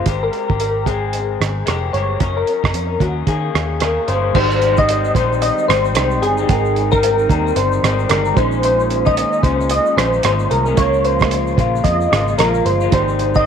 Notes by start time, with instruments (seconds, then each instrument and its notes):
Already playing: synth keys C5
0.06 picked electric bass G#1, clean electric guitar G#3 C4 G4 A#4, kick, closed hi-hat
0.23 synth keys A#4
0.33 closed hi-hat
0.48 picked electric bass G#1, clean electric guitar C4 G4 A#4, kick
0.60 synth keys A#4, closed hi-hat
0.86 clean electric guitar G#3 C4 A#4, synth keys G#4, kick, closed hi-hat
1.13 closed hi-hat
1.41 picked electric bass G#1, cross-stick, closed hi-hat
1.66 picked electric bass F1, clean electric guitar G#3 C4 G4 A#4, cross-stick, closed hi-hat
1.93 picked electric bass G1, clean electric guitar G#3 C4 G4 A#4, synth keys C#5, closed hi-hat
2.20 picked electric bass F#1, clean electric guitar F#3 C#4 D#4 A#4, kick, closed hi-hat
2.37 synth keys A#4
2.47 closed hi-hat
2.63 picked electric bass F#1, clean electric guitar C#4 D#4 A#4, kick, cross-stick
2.74 picked electric bass F2, closed hi-hat
3.00 picked electric bass D#2, clean electric guitar F#3 C#4 D#4, synth keys F#4, kick, closed hi-hat
3.04 clean electric guitar A#4
3.27 clean electric guitar D#3 A#3 C#4 G#4, picked electric bass D#3, synth keys G#4, kick, closed hi-hat
3.55 picked electric bass D#2, cross-stick, closed hi-hat
3.80 clean electric guitar D#3 A#3 C#4 G#4, synth keys A#4, cross-stick, closed hi-hat
4.07 picked electric bass G1, clean electric guitar D#3 A#3 C#4 G#4, synth keys C5, closed hi-hat
4.33 picked electric bass G#1, clean electric guitar G#2 G3 C4, analog synth pad D#3 C4 D#4, reed electric piano G#3 D#4 G4, synth keys C5, kick, crash
4.37 clean electric guitar D#4, reed electric piano C5
4.51 shaker
4.62 closed hi-hat, shaker
4.76 clean electric guitar G3 C4 D#4, synth keys D#5, kick, shaker
4.89 closed hi-hat, shaker
5.05 shaker
5.15 picked electric bass A#1, clean electric guitar G#2 G3 C4 D#4, synth keys C5, kick, closed hi-hat, shaker
5.33 shaker
5.42 synth keys D#5, closed hi-hat, shaker
5.58 shaker
5.68 picked electric bass G#1, clean electric guitar G#2 G3 C4 D#4, synth keys C5, cross-stick, closed hi-hat, shaker
5.85 shaker
5.95 picked electric bass C2, clean electric guitar G#2 G3 C4 D#4, synth keys C5, cross-stick, closed hi-hat, shaker
6.11 shaker
6.22 picked electric bass G1, synth keys G#4, closed hi-hat, shaker
6.37 clean electric guitar G3 C4 D#4, shaker
6.47 picked electric bass G#1, clean electric guitar G#2 C4, reed electric piano G#3 D#4 G5, kick, closed hi-hat, shaker
6.51 clean electric guitar D#4, reed electric piano A#4
6.65 shaker
6.76 closed hi-hat, shaker
6.91 clean electric guitar G3 C4 D#4, synth keys A#4, kick, shaker
7.03 closed hi-hat, shaker
7.19 shaker
7.28 picked electric bass D#2, clean electric guitar G#2 G3 C4 D#4, kick, closed hi-hat, shaker
7.48 shaker
7.56 picked electric bass G1, synth keys C5, closed hi-hat, shaker
7.72 shaker
7.83 picked electric bass G#1, clean electric guitar G#2 G3 C4 D#4, cross-stick, closed hi-hat, shaker
7.99 shaker
8.09 picked electric bass G1, clean electric guitar G#2 G3 C4 D#4, synth keys A#4, cross-stick, closed hi-hat, shaker
8.25 shaker
8.35 picked electric bass A#1, clean electric guitar A#2 G#3 C#4, reed electric piano G#3 C#4 D#4, analog synth pad A#3 C#4, synth keys C5, kick, closed hi-hat, shaker
8.39 clean electric guitar D#4, reed electric piano C5
8.52 shaker
8.63 synth keys C5, closed hi-hat, shaker
8.80 shaker
8.90 closed hi-hat, shaker
9.05 clean electric guitar C#4 D#4, synth keys D#5, kick, shaker
9.09 clean electric guitar G#3
9.17 closed hi-hat, shaker
9.33 shaker
9.43 picked electric bass C#2, clean electric guitar A#2 G#3 C#4 D#4, synth keys C5, kick, closed hi-hat, shaker
9.61 shaker
9.70 synth keys D#5, closed hi-hat, shaker
9.86 shaker
9.96 picked electric bass A#1, clean electric guitar A#2 G#3 C#4, synth keys C5, cross-stick, closed hi-hat, shaker
10.00 clean electric guitar D#4
10.13 shaker
10.23 picked electric bass G#1, clean electric guitar A#2 G#3 C#4 D#4, synth keys C5, cross-stick, closed hi-hat, shaker
10.40 shaker
10.51 picked electric bass C2, synth keys A#4, closed hi-hat, shaker
10.66 clean electric guitar C#4 D#4, shaker
10.70 clean electric guitar G#3
10.75 picked electric bass C#2, clean electric guitar C#3 G#3, analog synth pad C#3 F3 F4, reed electric piano G#3 C#4 F4, synth keys C#5, kick, closed hi-hat, shaker
10.79 clean electric guitar A#3 F4, reed electric piano A#4
10.94 shaker
11.05 synth keys C5, closed hi-hat, shaker
11.20 clean electric guitar G#3 A#3 F4, kick, cross-stick, shaker
11.31 closed hi-hat, shaker
11.47 shaker
11.57 picked electric bass A#1, clean electric guitar C#3 G#3 A#3 F4, kick, closed hi-hat, shaker
11.76 shaker
11.84 picked electric bass F2, synth keys D#5, kick, closed hi-hat, shaker
12.01 shaker
12.11 picked electric bass G#1, clean electric guitar C#3 G#3 A#3 F4, cross-stick, closed hi-hat, shaker
12.28 shaker
12.38 picked electric bass A#1, clean electric guitar C#3 G#3 A#3 F4, synth keys A#4, cross-stick, closed hi-hat, shaker
12.54 shaker
12.65 picked electric bass G1, synth keys C5, closed hi-hat, shaker
12.81 clean electric guitar A#3 F4, shaker
12.85 clean electric guitar G#3
12.90 picked electric bass G#1, clean electric guitar G#2 G3, analog synth pad C3 D#3 D#4, reed electric piano G#3 D#4 G4, synth keys C5, kick, closed hi-hat, shaker
12.94 clean electric guitar C4 D#4, reed electric piano C5
13.08 shaker
13.19 closed hi-hat, shaker
13.35 clean electric guitar G3 C4 D#4, synth keys D#5, kick, shaker